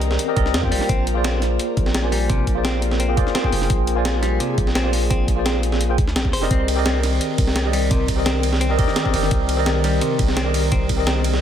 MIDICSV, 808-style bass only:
0, 0, Header, 1, 2, 480
1, 0, Start_track
1, 0, Key_signature, -3, "minor"
1, 0, Tempo, 350877
1, 1220, Time_signature, 4, 2, 24, 8
1, 15612, End_track
2, 0, Start_track
2, 0, Title_t, "808-style bass"
2, 0, Program_c, 0, 38
2, 0, Note_on_c, 0, 36, 93
2, 243, Note_off_c, 0, 36, 0
2, 502, Note_on_c, 0, 36, 86
2, 743, Note_on_c, 0, 41, 91
2, 764, Note_off_c, 0, 36, 0
2, 983, Note_on_c, 0, 34, 82
2, 1004, Note_off_c, 0, 41, 0
2, 1095, Note_off_c, 0, 34, 0
2, 1220, Note_on_c, 0, 34, 94
2, 2162, Note_off_c, 0, 34, 0
2, 2423, Note_on_c, 0, 34, 86
2, 3124, Note_off_c, 0, 34, 0
2, 3141, Note_on_c, 0, 34, 94
2, 4340, Note_on_c, 0, 38, 91
2, 4360, Note_off_c, 0, 34, 0
2, 4453, Note_off_c, 0, 38, 0
2, 4821, Note_on_c, 0, 29, 105
2, 5038, Note_off_c, 0, 29, 0
2, 5062, Note_on_c, 0, 34, 94
2, 6003, Note_off_c, 0, 34, 0
2, 6262, Note_on_c, 0, 34, 91
2, 6963, Note_off_c, 0, 34, 0
2, 6984, Note_on_c, 0, 34, 94
2, 8184, Note_on_c, 0, 38, 93
2, 8205, Note_off_c, 0, 34, 0
2, 8423, Note_on_c, 0, 34, 84
2, 8443, Note_off_c, 0, 38, 0
2, 8550, Note_on_c, 0, 38, 85
2, 8571, Note_off_c, 0, 34, 0
2, 8663, Note_on_c, 0, 29, 83
2, 8683, Note_off_c, 0, 38, 0
2, 8879, Note_off_c, 0, 29, 0
2, 8902, Note_on_c, 0, 36, 96
2, 9843, Note_off_c, 0, 36, 0
2, 10101, Note_on_c, 0, 36, 86
2, 10802, Note_off_c, 0, 36, 0
2, 10820, Note_on_c, 0, 36, 94
2, 12020, Note_on_c, 0, 39, 90
2, 12040, Note_off_c, 0, 36, 0
2, 12133, Note_off_c, 0, 39, 0
2, 12501, Note_on_c, 0, 31, 102
2, 12718, Note_off_c, 0, 31, 0
2, 12742, Note_on_c, 0, 36, 99
2, 13683, Note_off_c, 0, 36, 0
2, 13945, Note_on_c, 0, 36, 85
2, 14645, Note_off_c, 0, 36, 0
2, 14664, Note_on_c, 0, 36, 99
2, 15604, Note_off_c, 0, 36, 0
2, 15612, End_track
0, 0, End_of_file